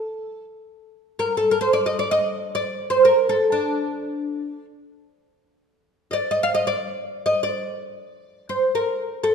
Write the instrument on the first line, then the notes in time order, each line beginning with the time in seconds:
oud
Already playing: A4
1.19 A#4
1.37 A4
1.51 A#4
1.61 C5
1.73 D5
1.86 D#5
1.99 D5
2.11 D#5
2.55 D5
2.90 C5
3.05 A#4
3.29 A4
3.52 D4
6.11 D5 D#5
6.31 D#5
6.43 F5
6.55 D#5
6.67 D5
7.26 D#5
7.43 D5
8.49 C5
8.75 A#4
9.24 A4